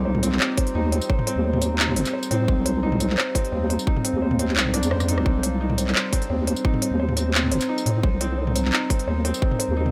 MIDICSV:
0, 0, Header, 1, 5, 480
1, 0, Start_track
1, 0, Tempo, 346821
1, 1517, Time_signature, 4, 2, 24, 8
1, 13718, End_track
2, 0, Start_track
2, 0, Title_t, "Ambient pad"
2, 0, Program_c, 0, 92
2, 0, Note_on_c, 0, 55, 83
2, 0, Note_on_c, 0, 60, 76
2, 0, Note_on_c, 0, 72, 87
2, 3422, Note_off_c, 0, 72, 0
2, 3431, Note_on_c, 0, 77, 90
2, 7261, Note_off_c, 0, 77, 0
2, 7284, Note_on_c, 0, 72, 89
2, 11107, Note_off_c, 0, 72, 0
2, 11128, Note_on_c, 0, 70, 88
2, 13718, Note_off_c, 0, 55, 0
2, 13718, Note_off_c, 0, 60, 0
2, 13718, Note_off_c, 0, 70, 0
2, 13718, End_track
3, 0, Start_track
3, 0, Title_t, "Felt piano"
3, 0, Program_c, 1, 0
3, 0, Control_c, 1, 64, 127
3, 0, Note_on_c, 1, 58, 80
3, 0, Note_on_c, 1, 60, 75
3, 0, Note_on_c, 1, 63, 103
3, 0, Note_on_c, 1, 67, 81
3, 0, Note_on_c, 1, 72, 82
3, 71, Note_off_c, 1, 72, 0
3, 71, Note_on_c, 1, 72, 79
3, 303, Note_off_c, 1, 72, 0
3, 316, Note_off_c, 1, 60, 0
3, 316, Note_on_c, 1, 60, 99
3, 534, Note_off_c, 1, 60, 0
3, 555, Note_on_c, 1, 60, 83
3, 773, Note_off_c, 1, 60, 0
3, 797, Note_on_c, 1, 72, 77
3, 1014, Note_off_c, 1, 72, 0
3, 1037, Note_off_c, 1, 63, 0
3, 1037, Note_on_c, 1, 63, 102
3, 1179, Note_off_c, 1, 63, 0
3, 1277, Note_on_c, 1, 60, 82
3, 1506, Note_off_c, 1, 60, 0
3, 1517, Note_on_c, 1, 72, 81
3, 1746, Note_off_c, 1, 72, 0
3, 1757, Note_on_c, 1, 60, 102
3, 1973, Note_off_c, 1, 60, 0
3, 1994, Note_on_c, 1, 60, 78
3, 2213, Note_off_c, 1, 60, 0
3, 2235, Note_on_c, 1, 72, 79
3, 2453, Note_off_c, 1, 72, 0
3, 2475, Note_on_c, 1, 63, 101
3, 2619, Note_off_c, 1, 63, 0
3, 2717, Note_on_c, 1, 60, 79
3, 2946, Note_off_c, 1, 60, 0
3, 2955, Note_on_c, 1, 72, 82
3, 3185, Note_off_c, 1, 72, 0
3, 3196, Note_on_c, 1, 60, 108
3, 3415, Note_off_c, 1, 60, 0
3, 3436, Note_on_c, 1, 60, 81
3, 3654, Note_off_c, 1, 60, 0
3, 3675, Note_on_c, 1, 72, 78
3, 3893, Note_off_c, 1, 72, 0
3, 3915, Note_on_c, 1, 63, 104
3, 4058, Note_off_c, 1, 63, 0
3, 4158, Note_on_c, 1, 60, 78
3, 4386, Note_off_c, 1, 60, 0
3, 4399, Note_on_c, 1, 72, 84
3, 4627, Note_off_c, 1, 72, 0
3, 4638, Note_on_c, 1, 60, 99
3, 4855, Note_off_c, 1, 60, 0
3, 4876, Note_on_c, 1, 60, 80
3, 5094, Note_off_c, 1, 60, 0
3, 5116, Note_on_c, 1, 72, 80
3, 5334, Note_off_c, 1, 72, 0
3, 5357, Note_on_c, 1, 63, 102
3, 5499, Note_off_c, 1, 63, 0
3, 5599, Note_on_c, 1, 60, 75
3, 5827, Note_off_c, 1, 60, 0
3, 5839, Note_on_c, 1, 72, 78
3, 6067, Note_off_c, 1, 72, 0
3, 6079, Note_on_c, 1, 60, 103
3, 6299, Note_off_c, 1, 60, 0
3, 6320, Note_on_c, 1, 60, 83
3, 6536, Note_off_c, 1, 60, 0
3, 6559, Note_on_c, 1, 62, 103
3, 6787, Note_off_c, 1, 62, 0
3, 6799, Note_on_c, 1, 72, 105
3, 7015, Note_off_c, 1, 72, 0
3, 7040, Note_on_c, 1, 63, 107
3, 7256, Note_off_c, 1, 63, 0
3, 7277, Note_on_c, 1, 60, 80
3, 7494, Note_off_c, 1, 60, 0
3, 7520, Note_on_c, 1, 72, 77
3, 7736, Note_off_c, 1, 72, 0
3, 7758, Note_on_c, 1, 63, 103
3, 7900, Note_off_c, 1, 63, 0
3, 7998, Note_on_c, 1, 60, 76
3, 8227, Note_off_c, 1, 60, 0
3, 8239, Note_on_c, 1, 72, 83
3, 8467, Note_off_c, 1, 72, 0
3, 8481, Note_on_c, 1, 60, 99
3, 8698, Note_off_c, 1, 60, 0
3, 8719, Note_on_c, 1, 60, 81
3, 8936, Note_off_c, 1, 60, 0
3, 8961, Note_on_c, 1, 72, 83
3, 9176, Note_off_c, 1, 72, 0
3, 9202, Note_on_c, 1, 63, 103
3, 9342, Note_off_c, 1, 63, 0
3, 9441, Note_on_c, 1, 60, 78
3, 9668, Note_off_c, 1, 60, 0
3, 9682, Note_on_c, 1, 72, 80
3, 9908, Note_off_c, 1, 72, 0
3, 9921, Note_on_c, 1, 60, 100
3, 10139, Note_off_c, 1, 60, 0
3, 10159, Note_on_c, 1, 60, 85
3, 10376, Note_off_c, 1, 60, 0
3, 10402, Note_on_c, 1, 72, 76
3, 10617, Note_off_c, 1, 72, 0
3, 10641, Note_on_c, 1, 63, 107
3, 10781, Note_off_c, 1, 63, 0
3, 10882, Note_on_c, 1, 60, 81
3, 11109, Note_off_c, 1, 60, 0
3, 11121, Note_on_c, 1, 72, 82
3, 11348, Note_off_c, 1, 72, 0
3, 11361, Note_on_c, 1, 60, 104
3, 11581, Note_off_c, 1, 60, 0
3, 11602, Note_on_c, 1, 60, 77
3, 11817, Note_off_c, 1, 60, 0
3, 11840, Note_on_c, 1, 72, 78
3, 12056, Note_off_c, 1, 72, 0
3, 12079, Note_on_c, 1, 63, 103
3, 12220, Note_off_c, 1, 63, 0
3, 12320, Note_on_c, 1, 60, 80
3, 12547, Note_off_c, 1, 60, 0
3, 12560, Note_on_c, 1, 72, 81
3, 12788, Note_off_c, 1, 72, 0
3, 12798, Note_on_c, 1, 60, 109
3, 13017, Note_off_c, 1, 60, 0
3, 13038, Note_on_c, 1, 60, 83
3, 13255, Note_off_c, 1, 60, 0
3, 13275, Note_on_c, 1, 72, 78
3, 13493, Note_off_c, 1, 72, 0
3, 13516, Note_on_c, 1, 63, 103
3, 13659, Note_off_c, 1, 63, 0
3, 13718, Note_off_c, 1, 58, 0
3, 13718, Note_off_c, 1, 67, 0
3, 13718, End_track
4, 0, Start_track
4, 0, Title_t, "Wobble bass"
4, 0, Program_c, 2, 39
4, 0, Note_on_c, 2, 36, 104
4, 542, Note_off_c, 2, 36, 0
4, 1034, Note_on_c, 2, 39, 95
4, 1386, Note_off_c, 2, 39, 0
4, 1881, Note_on_c, 2, 39, 95
4, 2712, Note_on_c, 2, 31, 85
4, 2732, Note_off_c, 2, 39, 0
4, 2831, Note_off_c, 2, 31, 0
4, 3195, Note_on_c, 2, 45, 94
4, 3418, Note_off_c, 2, 45, 0
4, 3436, Note_on_c, 2, 36, 104
4, 4382, Note_off_c, 2, 36, 0
4, 4875, Note_on_c, 2, 39, 94
4, 5226, Note_off_c, 2, 39, 0
4, 5722, Note_on_c, 2, 39, 95
4, 6316, Note_on_c, 2, 36, 101
4, 6337, Note_off_c, 2, 39, 0
4, 6685, Note_on_c, 2, 41, 84
4, 6706, Note_off_c, 2, 36, 0
4, 7163, Note_on_c, 2, 38, 81
4, 7184, Note_off_c, 2, 41, 0
4, 7268, Note_off_c, 2, 38, 0
4, 7276, Note_on_c, 2, 36, 99
4, 8222, Note_off_c, 2, 36, 0
4, 8716, Note_on_c, 2, 39, 98
4, 9067, Note_off_c, 2, 39, 0
4, 9565, Note_on_c, 2, 39, 95
4, 10402, Note_on_c, 2, 31, 86
4, 10422, Note_off_c, 2, 39, 0
4, 10516, Note_off_c, 2, 31, 0
4, 10875, Note_on_c, 2, 45, 94
4, 11098, Note_off_c, 2, 45, 0
4, 11116, Note_on_c, 2, 36, 106
4, 12062, Note_off_c, 2, 36, 0
4, 12556, Note_on_c, 2, 39, 96
4, 12907, Note_off_c, 2, 39, 0
4, 13403, Note_on_c, 2, 39, 91
4, 13718, Note_off_c, 2, 39, 0
4, 13718, End_track
5, 0, Start_track
5, 0, Title_t, "Drums"
5, 204, Note_on_c, 9, 45, 53
5, 316, Note_on_c, 9, 42, 66
5, 316, Note_on_c, 9, 54, 67
5, 343, Note_off_c, 9, 45, 0
5, 441, Note_on_c, 9, 39, 38
5, 455, Note_off_c, 9, 42, 0
5, 455, Note_off_c, 9, 54, 0
5, 554, Note_off_c, 9, 39, 0
5, 554, Note_on_c, 9, 39, 119
5, 693, Note_off_c, 9, 39, 0
5, 796, Note_on_c, 9, 42, 78
5, 797, Note_on_c, 9, 36, 108
5, 923, Note_off_c, 9, 42, 0
5, 923, Note_on_c, 9, 42, 36
5, 935, Note_off_c, 9, 36, 0
5, 1062, Note_off_c, 9, 42, 0
5, 1278, Note_on_c, 9, 42, 66
5, 1404, Note_on_c, 9, 54, 67
5, 1416, Note_off_c, 9, 42, 0
5, 1517, Note_on_c, 9, 36, 115
5, 1543, Note_off_c, 9, 54, 0
5, 1645, Note_on_c, 9, 45, 62
5, 1655, Note_off_c, 9, 36, 0
5, 1758, Note_on_c, 9, 42, 77
5, 1783, Note_off_c, 9, 45, 0
5, 1897, Note_off_c, 9, 42, 0
5, 2123, Note_on_c, 9, 45, 55
5, 2236, Note_on_c, 9, 42, 65
5, 2236, Note_on_c, 9, 54, 69
5, 2262, Note_off_c, 9, 45, 0
5, 2375, Note_off_c, 9, 42, 0
5, 2375, Note_off_c, 9, 54, 0
5, 2475, Note_on_c, 9, 39, 118
5, 2603, Note_on_c, 9, 45, 55
5, 2613, Note_off_c, 9, 39, 0
5, 2717, Note_on_c, 9, 42, 80
5, 2741, Note_off_c, 9, 45, 0
5, 2843, Note_off_c, 9, 42, 0
5, 2843, Note_on_c, 9, 39, 37
5, 2843, Note_on_c, 9, 42, 35
5, 2843, Note_on_c, 9, 54, 69
5, 2981, Note_off_c, 9, 39, 0
5, 2981, Note_off_c, 9, 42, 0
5, 2981, Note_off_c, 9, 54, 0
5, 3082, Note_on_c, 9, 54, 71
5, 3196, Note_on_c, 9, 42, 65
5, 3221, Note_off_c, 9, 54, 0
5, 3335, Note_off_c, 9, 42, 0
5, 3436, Note_on_c, 9, 36, 115
5, 3574, Note_off_c, 9, 36, 0
5, 3677, Note_on_c, 9, 42, 79
5, 3816, Note_off_c, 9, 42, 0
5, 4042, Note_on_c, 9, 45, 58
5, 4156, Note_on_c, 9, 42, 67
5, 4156, Note_on_c, 9, 54, 73
5, 4181, Note_off_c, 9, 45, 0
5, 4284, Note_on_c, 9, 39, 36
5, 4294, Note_off_c, 9, 42, 0
5, 4294, Note_off_c, 9, 54, 0
5, 4399, Note_off_c, 9, 39, 0
5, 4399, Note_on_c, 9, 39, 111
5, 4537, Note_off_c, 9, 39, 0
5, 4636, Note_on_c, 9, 36, 100
5, 4641, Note_on_c, 9, 42, 82
5, 4769, Note_off_c, 9, 42, 0
5, 4769, Note_on_c, 9, 42, 35
5, 4775, Note_off_c, 9, 36, 0
5, 4907, Note_off_c, 9, 42, 0
5, 5122, Note_on_c, 9, 42, 67
5, 5247, Note_on_c, 9, 54, 68
5, 5261, Note_off_c, 9, 42, 0
5, 5356, Note_on_c, 9, 36, 114
5, 5385, Note_off_c, 9, 54, 0
5, 5487, Note_on_c, 9, 45, 64
5, 5495, Note_off_c, 9, 36, 0
5, 5600, Note_on_c, 9, 42, 85
5, 5626, Note_off_c, 9, 45, 0
5, 5738, Note_off_c, 9, 42, 0
5, 5965, Note_on_c, 9, 45, 58
5, 6080, Note_on_c, 9, 42, 68
5, 6103, Note_off_c, 9, 45, 0
5, 6204, Note_on_c, 9, 39, 36
5, 6218, Note_off_c, 9, 42, 0
5, 6318, Note_off_c, 9, 39, 0
5, 6318, Note_on_c, 9, 39, 116
5, 6442, Note_on_c, 9, 45, 55
5, 6456, Note_off_c, 9, 39, 0
5, 6556, Note_on_c, 9, 37, 61
5, 6556, Note_on_c, 9, 42, 82
5, 6581, Note_off_c, 9, 45, 0
5, 6682, Note_off_c, 9, 42, 0
5, 6682, Note_on_c, 9, 42, 39
5, 6682, Note_on_c, 9, 54, 70
5, 6695, Note_off_c, 9, 37, 0
5, 6796, Note_on_c, 9, 37, 77
5, 6820, Note_off_c, 9, 42, 0
5, 6820, Note_off_c, 9, 54, 0
5, 6923, Note_off_c, 9, 37, 0
5, 6923, Note_on_c, 9, 37, 75
5, 6923, Note_on_c, 9, 54, 70
5, 7037, Note_on_c, 9, 42, 72
5, 7061, Note_off_c, 9, 37, 0
5, 7061, Note_off_c, 9, 54, 0
5, 7165, Note_on_c, 9, 37, 84
5, 7176, Note_off_c, 9, 42, 0
5, 7277, Note_on_c, 9, 36, 118
5, 7303, Note_off_c, 9, 37, 0
5, 7415, Note_off_c, 9, 36, 0
5, 7520, Note_on_c, 9, 42, 84
5, 7658, Note_off_c, 9, 42, 0
5, 7885, Note_on_c, 9, 45, 57
5, 8000, Note_on_c, 9, 42, 68
5, 8000, Note_on_c, 9, 54, 67
5, 8023, Note_off_c, 9, 45, 0
5, 8125, Note_on_c, 9, 39, 39
5, 8138, Note_off_c, 9, 42, 0
5, 8138, Note_off_c, 9, 54, 0
5, 8240, Note_off_c, 9, 39, 0
5, 8240, Note_on_c, 9, 39, 124
5, 8378, Note_off_c, 9, 39, 0
5, 8478, Note_on_c, 9, 36, 105
5, 8479, Note_on_c, 9, 42, 86
5, 8606, Note_off_c, 9, 42, 0
5, 8606, Note_on_c, 9, 42, 39
5, 8616, Note_off_c, 9, 36, 0
5, 8744, Note_off_c, 9, 42, 0
5, 8959, Note_on_c, 9, 42, 72
5, 9085, Note_on_c, 9, 54, 67
5, 9098, Note_off_c, 9, 42, 0
5, 9199, Note_on_c, 9, 36, 126
5, 9223, Note_off_c, 9, 54, 0
5, 9323, Note_on_c, 9, 45, 63
5, 9337, Note_off_c, 9, 36, 0
5, 9439, Note_on_c, 9, 42, 83
5, 9462, Note_off_c, 9, 45, 0
5, 9577, Note_off_c, 9, 42, 0
5, 9807, Note_on_c, 9, 45, 56
5, 9920, Note_on_c, 9, 42, 72
5, 9920, Note_on_c, 9, 54, 64
5, 9946, Note_off_c, 9, 45, 0
5, 10058, Note_off_c, 9, 42, 0
5, 10058, Note_off_c, 9, 54, 0
5, 10161, Note_on_c, 9, 39, 123
5, 10286, Note_on_c, 9, 45, 54
5, 10299, Note_off_c, 9, 39, 0
5, 10401, Note_on_c, 9, 42, 88
5, 10425, Note_off_c, 9, 45, 0
5, 10527, Note_off_c, 9, 42, 0
5, 10527, Note_on_c, 9, 39, 39
5, 10527, Note_on_c, 9, 42, 40
5, 10527, Note_on_c, 9, 54, 65
5, 10665, Note_off_c, 9, 39, 0
5, 10665, Note_off_c, 9, 42, 0
5, 10665, Note_off_c, 9, 54, 0
5, 10765, Note_on_c, 9, 54, 65
5, 10881, Note_on_c, 9, 42, 73
5, 10904, Note_off_c, 9, 54, 0
5, 11019, Note_off_c, 9, 42, 0
5, 11119, Note_on_c, 9, 36, 127
5, 11258, Note_off_c, 9, 36, 0
5, 11359, Note_on_c, 9, 42, 86
5, 11498, Note_off_c, 9, 42, 0
5, 11725, Note_on_c, 9, 45, 54
5, 11841, Note_on_c, 9, 42, 69
5, 11841, Note_on_c, 9, 54, 64
5, 11864, Note_off_c, 9, 45, 0
5, 11969, Note_on_c, 9, 39, 40
5, 11979, Note_off_c, 9, 42, 0
5, 11979, Note_off_c, 9, 54, 0
5, 12080, Note_off_c, 9, 39, 0
5, 12080, Note_on_c, 9, 39, 126
5, 12218, Note_off_c, 9, 39, 0
5, 12319, Note_on_c, 9, 36, 112
5, 12321, Note_on_c, 9, 42, 83
5, 12447, Note_off_c, 9, 42, 0
5, 12447, Note_on_c, 9, 42, 38
5, 12457, Note_off_c, 9, 36, 0
5, 12586, Note_off_c, 9, 42, 0
5, 12800, Note_on_c, 9, 42, 74
5, 12928, Note_on_c, 9, 54, 65
5, 12939, Note_off_c, 9, 42, 0
5, 13038, Note_on_c, 9, 36, 127
5, 13066, Note_off_c, 9, 54, 0
5, 13168, Note_on_c, 9, 45, 60
5, 13177, Note_off_c, 9, 36, 0
5, 13282, Note_on_c, 9, 42, 80
5, 13307, Note_off_c, 9, 45, 0
5, 13420, Note_off_c, 9, 42, 0
5, 13645, Note_on_c, 9, 45, 53
5, 13718, Note_off_c, 9, 45, 0
5, 13718, End_track
0, 0, End_of_file